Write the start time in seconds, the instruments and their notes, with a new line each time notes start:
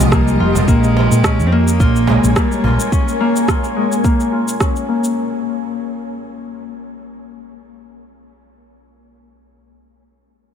Already playing: ambient pad F3 G4 D#5, harp G#3 A#3 C4 F4
0.00 fretless electric bass C2, shaker
0.12 cello G3, harp A#3, kick, cross-stick, shaker
0.28 shaker
0.40 fretless electric bass F1, harp F4
0.55 cajon bass, shaker
0.68 fretless electric bass A#1, cello G#3, harp A#3, ambient pad A#3 C#5 G#5, kick, shaker
0.84 cajon slap, shaker
0.96 harp F4, cajon slap
1.11 fretless electric bass A#2, shaker
1.24 harp C#4, kick, cross-stick, shaker
1.40 fretless electric bass F2, shaker
1.46 cello C4
1.52 harp A#3, cello A#3
1.68 shaker
1.80 fretless electric bass A#1, harp F4, kick, shaker
1.96 shaker
2.07 harp G#3, cajon bass, cajon slap
2.24 fretless electric bass A#1, shaker
2.36 cello G3, harp A#3, kick, cross-stick, shaker
2.52 shaker
2.64 fretless electric bass A#1, harp F4, cajon bass
2.80 shaker
2.92 harp C#4, kick, shaker
3.08 shaker
3.20 harp A#3
3.36 shaker
3.48 harp F4, kick, cross-stick, shaker
3.64 shaker
3.76 harp G#3
3.92 shaker
4.04 harp A#3, kick, shaker
4.20 shaker
4.32 harp F4
4.48 shaker
4.60 harp C#4, kick, cross-stick, shaker
4.76 shaker
4.88 harp A#3
5.04 shaker